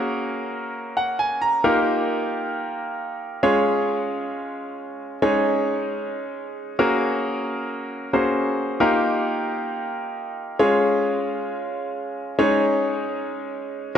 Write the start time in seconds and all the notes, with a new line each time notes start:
Already playing: A#3 C#4 F#4 G#4 A#4
0.97 F#5
1.19 G#5
1.42 A#5
1.64 A#3 D#4 F4 G4 A#4
3.43 G#3 C#4 F4 G#4 C#5
5.22 G#3 C#4 D#4 G#4 C#5
6.79 A#3 C#4 F#4 G#4 A#4
8.13 A#3 C#4 F#4 G#4 C5
8.80 A#3 D#4 F4 G4 A#4
10.59 G#3 C#4 F4 G#4 C#5
12.39 G#3 C#4 D#4 G#4 C#5